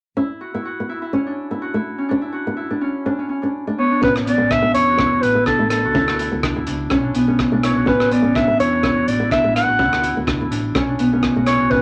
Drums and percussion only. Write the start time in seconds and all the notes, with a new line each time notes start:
4.03 kick
4.16 cross-stick
4.27 closed hi-hat
4.51 kick, cross-stick
4.75 closed hi-hat
4.99 kick, cross-stick
5.23 closed hi-hat
5.46 kick, cross-stick
5.70 cross-stick, closed hi-hat
5.95 kick
6.08 cross-stick
6.19 closed hi-hat
6.43 kick, cross-stick
6.67 closed hi-hat
6.90 kick, cross-stick
7.15 closed hi-hat
7.39 kick, cross-stick
7.63 cross-stick, closed hi-hat
7.87 kick
8.00 cross-stick
8.11 closed hi-hat
8.35 kick, cross-stick
8.60 closed hi-hat
8.83 kick, cross-stick
9.08 closed hi-hat
9.31 kick, cross-stick
9.56 cross-stick, closed hi-hat
9.79 kick
9.93 cross-stick
10.04 closed hi-hat
10.27 kick, cross-stick
10.52 closed hi-hat
10.75 kick, cross-stick
10.99 closed hi-hat
11.23 kick, cross-stick
11.46 cross-stick, closed hi-hat
11.71 kick